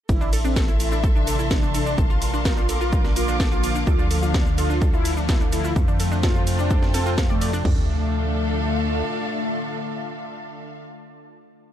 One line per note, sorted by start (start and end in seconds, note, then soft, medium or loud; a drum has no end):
0.09 1.96 A1 medium
0.09 1.96 C3 medium
0.09 1.96 E3 medium
0.09 1.96 A3 medium
0.09 0.29 E4 loud
0.09 1.98 A4 medium
0.09 kick loud
0.09 ride medium
0.09 shaker soft
0.19 0.30 D4 medium
0.19 4.63 C6 medium
0.19 shaker soft
0.25 1.98 E5 medium
0.33 0.38 A4 medium
0.33 open hi-hat loud
0.33 ride medium
0.33 shaker medium
0.44 0.65 C4 loud
0.44 0.54 D4 medium
0.44 shaker soft
0.56 0.68 A4 medium
0.56 kick loud
0.56 snare loud
0.56 ride medium
0.56 shaker soft
0.63 2.74 A5 medium
0.68 0.77 E4 medium
0.68 shaker soft
0.80 1.00 E4 loud
0.80 open hi-hat medium
0.80 ride medium
0.80 shaker medium
0.92 1.01 D4 medium
0.92 shaker soft
1.04 1.09 A4 medium
1.04 kick loud
1.04 ride medium
1.04 shaker soft
1.15 1.35 D4 loud
1.15 1.25 D4 medium
1.15 shaker soft
1.27 1.38 A4 medium
1.27 open hi-hat loud
1.27 ride medium
1.27 shaker medium
1.39 1.48 E4 medium
1.39 shaker soft
1.51 1.64 D4 medium
1.51 kick loud
1.51 snare loud
1.51 ride medium
1.51 shaker soft
1.63 1.72 D4 medium
1.63 shaker soft
1.74 1.94 D4 loud
1.74 1.80 A4 medium
1.74 open hi-hat medium
1.74 ride medium
1.74 shaker medium
1.86 1.95 D4 medium
1.86 shaker soft
1.98 3.85 A#1 medium
1.98 5.72 D3 medium
1.98 3.85 F3 medium
1.98 3.85 A#3 medium
1.98 2.09 A4 medium
1.98 3.87 A#4 medium
1.98 kick loud
1.98 ride medium
1.98 shaker soft
2.04 6.52 F5 medium
2.10 2.19 F4 medium
2.10 shaker soft
2.22 open hi-hat loud
2.22 ride medium
2.22 shaker medium
2.34 2.43 D4 medium
2.34 shaker soft
2.45 2.65 F4 medium
2.45 2.51 A#4 medium
2.45 kick loud
2.45 snare loud
2.45 ride medium
2.45 shaker soft
2.57 2.66 D4 medium
2.57 shaker soft
2.69 2.80 A4 medium
2.69 4.63 D6 medium
2.69 open hi-hat loud
2.69 ride medium
2.69 shaker medium
2.81 3.01 F4 loud
2.81 2.90 F4 medium
2.81 shaker soft
2.93 kick loud
2.93 ride medium
2.93 shaker soft
3.04 3.14 D4 medium
3.04 snare soft
3.04 shaker soft
3.16 3.36 F4 loud
3.16 3.22 A#4 medium
3.16 open hi-hat loud
3.16 ride medium
3.16 shaker medium
3.28 3.37 D4 medium
3.28 shaker soft
3.40 3.51 A4 medium
3.40 kick loud
3.40 snare loud
3.40 ride medium
3.40 shaker soft
3.52 3.72 F4 loud
3.52 3.61 F4 medium
3.52 shaker soft
3.64 open hi-hat medium
3.64 ride medium
3.64 shaker medium
3.75 3.85 D4 medium
3.75 shaker soft
3.87 5.74 D2 medium
3.87 7.61 F3 medium
3.87 7.61 A3 medium
3.87 6.52 D4 medium
3.87 4.07 F4 loud
3.87 3.93 A4 medium
3.87 kick loud
3.87 ride soft
3.87 shaker soft
3.99 4.08 D4 medium
3.99 shaker soft
4.11 4.22 A4 medium
4.11 open hi-hat loud
4.11 ride medium
4.11 shaker medium
4.18 6.52 A4 medium
4.23 4.43 D4 loud
4.23 4.32 F4 medium
4.23 shaker soft
4.34 kick loud
4.34 snare loud
4.34 ride medium
4.34 shaker soft
4.46 4.55 D4 medium
4.46 shaker soft
4.58 4.78 F4 loud
4.58 4.63 A4 medium
4.58 open hi-hat medium
4.58 ride medium
4.58 shaker medium
4.70 4.79 D4 medium
4.70 shaker soft
4.82 4.93 A4 medium
4.82 kick loud
4.82 ride soft
4.82 shaker soft
4.93 5.13 E4 loud
4.93 5.03 F4 medium
4.93 shaker soft
5.05 open hi-hat loud
5.05 ride medium
5.05 shaker medium
5.17 5.26 D4 medium
5.17 shaker soft
5.29 5.42 E4 medium
5.29 5.34 A4 medium
5.29 kick loud
5.29 snare loud
5.29 ride medium
5.29 shaker soft
5.41 5.50 D4 medium
5.41 shaker soft
5.52 5.73 E4 loud
5.52 5.64 A4 medium
5.52 open hi-hat medium
5.52 ride medium
5.52 shaker medium
5.64 5.73 F4 medium
5.64 shaker soft
5.76 7.63 F2 medium
5.76 7.63 C3 medium
5.76 7.65 F4 medium
5.76 kick loud
5.76 ride medium
5.76 shaker soft
5.84 5.97 D4 medium
5.84 7.65 C5 medium
5.84 shaker soft
5.92 7.65 G5 medium
6.00 6.05 A4 medium
6.00 open hi-hat loud
6.00 ride medium
6.00 shaker medium
6.12 6.21 D4 medium
6.12 shaker soft
6.23 6.43 F4 loud
6.23 6.35 A4 medium
6.23 7.65 A5 medium
6.23 kick loud
6.23 snare loud
6.23 ride medium
6.23 shaker soft
6.35 6.44 F4 medium
6.35 shaker soft
6.47 open hi-hat loud
6.47 ride medium
6.47 shaker medium
6.59 6.68 D4 medium
6.59 6.79 D4 loud
6.59 shaker soft
6.71 6.76 A4 medium
6.71 kick loud
6.71 ride medium
6.71 shaker soft
6.82 6.92 D4 medium
6.82 snare soft
6.82 shaker soft
6.94 7.14 C4 loud
6.94 7.03 A4 loud
6.94 open hi-hat loud
6.94 ride medium
6.94 shaker medium
7.06 7.15 F4 loud
7.06 shaker soft
7.18 7.27 F5 medium
7.18 kick loud
7.18 snare loud
7.18 ride medium
7.18 shaker soft
7.30 7.50 A3 loud
7.30 7.35 D5 medium
7.30 shaker soft
7.41 7.51 D5 loud
7.41 open hi-hat loud
7.41 ride medium
7.41 shaker medium
7.53 7.62 D4 loud
7.53 shaker soft
7.65 9.03 D2 loud
7.65 10.63 D3 medium
7.65 10.63 A3 loud
7.65 10.63 A3 medium
7.65 7.87 D4 medium
7.65 10.63 D4 medium
7.65 10.63 F4 medium
7.65 10.63 D5 medium
7.65 10.63 A5 medium
7.65 kick loud
7.65 floor tom loud
7.65 crash medium
7.72 10.70 A4 medium
7.79 10.77 E5 medium
7.86 10.85 F5 medium